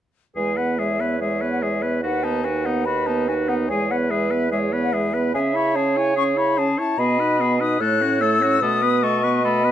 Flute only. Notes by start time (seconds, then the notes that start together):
0.36 G#5
0.57 F#5
0.78 E5
1.20 E5
1.52 F#5
1.62 E5
2.03 F#5
2.23 A5
2.44 G#5
2.65 F#5
2.85 B5
3.07 A5
3.28 G#5
3.48 F#5
3.69 G#5
3.90 F#5
4.10 E5
4.51 E5
4.83 F#5
4.93 E5
5.34 G#5
5.55 B5
5.76 A5
5.96 G#5
6.17 C#6
6.38 B5
6.59 A5
6.79 A5
6.98 B5
7.60 D#6
7.81 F#6
8.21 E6
8.63 D#6
9.04 C#6
9.45 B5